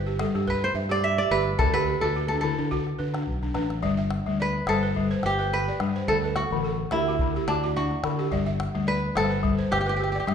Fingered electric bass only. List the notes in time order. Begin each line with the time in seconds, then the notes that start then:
Already playing: G1
0.35 G2
0.75 G2
1.31 G1
1.60 D2
2.03 D2
2.59 D3
3.00 D3
3.28 B1
3.55 A1
3.83 G1
4.26 D2
4.67 G1
5.24 G1
5.80 G2
6.08 D2
6.51 A1
6.92 D2
7.48 D2
8.03 D3
8.32 G1
8.75 D2
9.16 G1
9.72 G1
10.27 G2